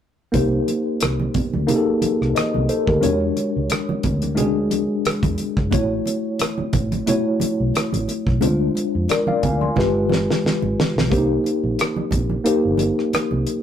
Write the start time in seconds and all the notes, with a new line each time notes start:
0.32 C2 A#3 D#4 G4 C5, kick, closed hi-hat, low conga
0.68 closed hi-hat, muted conga
1.00 C2, cross-stick, closed hi-hat, muted conga
1.20 high conga
1.34 kick, closed hi-hat, muted conga, low conga
1.53 D2, high conga
1.67 A#3 D#4 G4 G#4, closed hi-hat, low conga
1.76 A4
2.02 muted fingered electric bass stroke, closed hi-hat, high conga
2.21 C2, cross-stick
2.35 C5 D#5, cross-stick, closed hi-hat
2.54 C2, high conga
2.69 A4 C5, closed hi-hat
2.87 D2 G4 A#4, kick, cross-stick
3.01 E2 G#3 D4 F#4 C#5, closed hi-hat, muted conga, low conga
3.36 closed hi-hat, muted conga
3.56 C#2
3.70 cross-stick, closed hi-hat, muted conga
3.89 high conga
4.03 D2, kick, closed hi-hat, muted conga, low conga
4.22 closed hi-hat, high conga
4.35 G#3 D4 F#4 G#4, closed hi-hat, muted conga, low conga
4.71 closed hi-hat, high conga
5.05 muted fingered electric bass stroke, cross-stick, closed hi-hat, muted conga
5.23 E2, kick, closed hi-hat, high conga
5.38 closed hi-hat, muted conga
5.57 F#1, kick, cross-stick
5.71 A1 A3 E4 F#4 C#5, kick, closed hi-hat, low conga
6.06 closed hi-hat, muted conga
6.39 cross-stick, closed hi-hat, muted conga
6.58 muted fingered electric bass stroke, high conga
6.73 A1, kick, closed hi-hat, low conga
6.92 closed hi-hat, high conga
7.07 A3 E4 F#4 C#5, closed hi-hat, muted conga, low conga
7.40 muted fingered electric bass stroke, closed hi-hat, muted conga, high conga
7.60 B1
7.74 cross-stick, closed hi-hat, muted conga
7.92 A1, closed hi-hat, high conga
8.08 closed hi-hat, muted conga
8.27 B1, kick, cross-stick
8.41 D2 G#3 D4 F4 C5, closed hi-hat, muted conga, low conga
8.75 closed hi-hat, muted conga
8.95 F2
9.08 A#4 D5, cross-stick, closed hi-hat, muted conga
9.27 D5 F5, high conga
9.43 D2 F5 G#5, kick, closed hi-hat, low conga
9.61 G#5 C6, high conga
9.76 G1 G#3 F4 G4 B4, kick, snare, low conga
10.09 snare, muted conga, high conga
10.30 snare
10.44 muted fingered electric bass stroke, snare, muted conga
10.62 G#1, high conga
10.80 snare
10.96 B1, snare
11.10 C2 A#3 D4 G4 C5, kick, closed hi-hat, muted conga, low conga
11.17 D#4
11.44 closed hi-hat, muted conga
11.63 A#1, high conga
11.79 cross-stick, closed hi-hat
11.96 high conga
12.11 A#1, kick, closed hi-hat, muted conga, low conga
12.29 high conga
12.44 A#3 D#4 G4 C5, muted fingered electric bass stroke, closed hi-hat
12.65 G1
12.78 closed hi-hat, muted conga, high conga
12.99 cross-stick
13.13 muted fingered electric bass stroke, cross-stick, closed hi-hat
13.31 C2, high conga
13.47 closed hi-hat, muted conga